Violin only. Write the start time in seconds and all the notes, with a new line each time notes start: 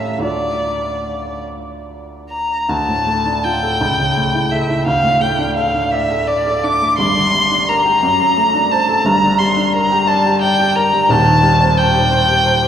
Already playing: E5
0.22 D5
2.29 A#5
2.69 A5
3.44 G5
4.51 E5
4.86 F5
5.21 G5
5.55 F5
5.91 E5
6.27 D5
6.63 D6
6.98 C6
7.69 A#5
8.71 A5
9.06 A#5
9.39 C6
9.73 A#5
10.07 A5
10.41 G5
10.76 A#5
11.10 A5
11.77 G5